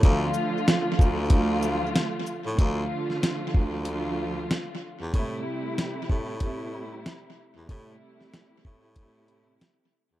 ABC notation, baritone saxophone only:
X:1
M:4/4
L:1/16
Q:"Swing 16ths" 1/4=94
K:Dm
V:1 name="Baritone saxophone" clef=bass
D,,2 z4 D,,6 z3 A,, | D,,2 z4 D,,6 z3 E,, | A,,2 z4 A,,6 z3 E,, | A,,2 z4 A,,6 z3 E,, |]